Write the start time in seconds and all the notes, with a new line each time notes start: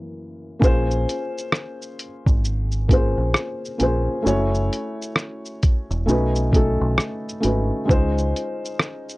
Already playing: F#2 E3 A#3
0.60 A#1 A#3 C#4 F4 G#4, kick, shaker
0.64 C5
0.91 shaker
1.09 closed hi-hat, shaker
1.38 shaker
1.52 cross-stick, shaker
1.82 shaker
1.99 closed hi-hat, shaker
2.26 G#1, kick, shaker
2.45 shaker
2.72 shaker
2.88 A#3 C#4 F4 G#4, kick, closed hi-hat, shaker
2.93 C5
3.18 A#1
3.34 cross-stick, shaker
3.65 shaker
3.78 A#1 A#3 C#4 F4 G#4, closed hi-hat, shaker
3.83 C5
4.22 A3 C#4 E4 F#4
4.27 F#1 C#5, shaker
4.55 shaker
4.73 closed hi-hat, shaker
5.02 shaker
5.16 cross-stick, shaker
5.45 shaker
5.63 kick, closed hi-hat, shaker
5.91 E1, shaker
6.06 B1 A3 C#4 D#4 F#4, shaker
6.10 B4
6.36 shaker
6.51 A3 C#4 D#4 F#4, kick, closed hi-hat, shaker
6.56 A4
6.81 B1
6.98 cross-stick, shaker
7.29 shaker
7.40 A3 C#4 D#4 F#4, closed hi-hat, shaker
7.44 G#1 B4
7.85 G#3 C#4 D#4 F4
7.89 C#2 C5, kick, shaker
8.18 shaker
8.36 closed hi-hat, shaker
8.65 shaker
8.79 cross-stick, shaker
9.09 shaker